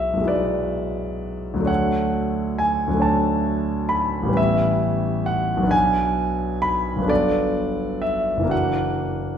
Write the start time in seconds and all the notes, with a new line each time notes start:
Already playing: B1 F#3 G#3 E4 B4 E5 F#5
0.14 B1 F#3
0.21 G#3 E4
0.27 B4 D5
1.54 D2 F#3
1.60 A3 D4
1.66 C#5 F#5
2.58 G#5
2.87 D2 F#3
2.94 A3 D4
3.00 C#5 A5
3.89 B5
4.23 A1 G3
4.29 B3 C#4
4.35 B4 E5
5.26 F#5
5.57 B1 F#3
5.63 B3 D4
5.69 B4 G#5
6.62 B5
6.96 G1 F#3
7.02 B3 D4
7.08 A4 D5
8.02 E5
8.37 F#1 E3
8.43 A#3 D4
8.49 F#4 F#5